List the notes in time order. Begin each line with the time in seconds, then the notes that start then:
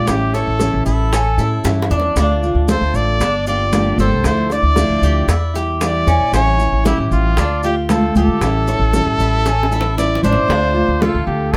Already playing: G4
0.07 A1 E3 G3 C#4 E4 G4, high bongo, high conga, maracas
0.33 G3 C#4 E4 A4 C#5, high bongo, high conga, maracas
0.47 A1
0.59 E3 G3 C#4 E4, high bongo, high conga, maracas
0.74 A1
0.86 A1 E4 A4, high conga, maracas
1.12 C#4, muted nylon-string guitar stroke, high bongo, high conga, maracas
1.38 A2 G3 C#4 E4, high bongo, high conga, maracas
1.64 G2 E3 G3 C#4 E4, high bongo, high conga, maracas
1.82 high bongo
1.90 E2 G3 C#4 D4 E4, maracas
2.00 low bongo
2.16 D2 D3 A3 C4 D4 F4, high bongo, high conga, maracas
2.43 A3 C4 F4, high conga, maracas
2.55 D2
2.67 D3 A3 C4 F4 A4 C5, high bongo, high conga, maracas
2.81 D2
2.94 A1 D5, high conga, maracas
3.20 G1 D4, muted nylon-string guitar stroke, high bongo, high conga, maracas
3.47 A#3 D4 F4 G4 D5, high conga, maracas
3.72 D3 F3 A#3 D4 G4, high bongo, low bongo, high conga, maracas
3.98 G1 A#3 D4 G4 A4 C5, high conga, maracas
4.11 C2
4.24 D2 D3 F3 A3 D4 E4 C5, high bongo, high conga, maracas
4.50 A3 D4 E4 D5, high bongo, high conga, maracas
4.63 D2
4.76 D3 F3 A3 D4 E4, high bongo, high conga, maracas
4.89 D2
5.02 D2 G4, high conga, maracas
5.28 E2 E4, muted nylon-string guitar stroke, high bongo, high conga, maracas
5.54 G3 E4 G4, high bongo, high conga, maracas
5.81 E3 G3 E4 D5, high bongo, low bongo, high conga, maracas
6.07 E2 G3 C#4 E4, high bongo, maracas
6.18 A#1
6.32 A1 E3 G3 C#4 E4 C#5, high bongo, high conga, maracas
6.58 G3 C#4 E4, high conga, maracas
6.72 A1
6.84 E3 G3 C#4 E4 G4, high bongo, high conga, maracas
6.98 A1
7.11 A1 F4, high conga, maracas
7.37 D2 D4, muted nylon-string guitar stroke, high bongo, high conga, maracas
7.63 A3 C4 F4 G4, high conga, maracas
7.89 D3 A3 C4 F4 A4, high bongo, low bongo, high conga, maracas
8.15 D2 A3 C4 F4 G4 A4, high conga, maracas
8.28 D3
8.41 A1 E3 G3 C#4 E4, high bongo, high conga, maracas
8.67 C#4 E4 C#5, high bongo, high conga, maracas
8.72 G3
8.79 A1
8.93 E3 G3 C#4 E4, high bongo, high conga, maracas
9.06 A1
9.18 A1 E4, high conga, maracas
9.45 C#4, muted nylon-string guitar stroke, high bongo, high conga, maracas
9.63 high bongo
9.71 G3 C#4 E4, high conga, maracas
9.81 low bongo
9.97 E3 G3 C#4 E4 D5, low bongo, high conga, maracas
10.15 low bongo
10.23 A1 G3 C#4 D4 E4 C5, high conga, maracas
10.33 A2, low bongo
10.48 D2 D3 A3 C4 D4 F4, high bongo, high conga
10.74 A3 C4 F4, high conga
10.88 D2
11.01 D3 A3 C4 F4 A4, high bongo, high conga
11.15 D2
11.27 D2 G4, high conga
11.52 G1 A4, muted nylon-string guitar stroke, high bongo